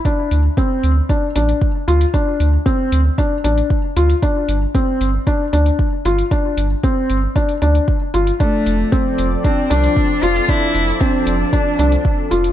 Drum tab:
HH |x-x-x-x-x-xx--xx|x-x-x-x-x-xx--xx|x-x-x-x-x-xx--xx|x-x-x-x-xxxx--xx|
BD |o---o---o---o---|o---o---o---o---|o---o---o---o---|o---o---o---o---|

HH |x-x-x-x-x-xx--xx|x-x-x-x-x-xx--xx|
BD |o---o---o---o---|o---o---o---o---|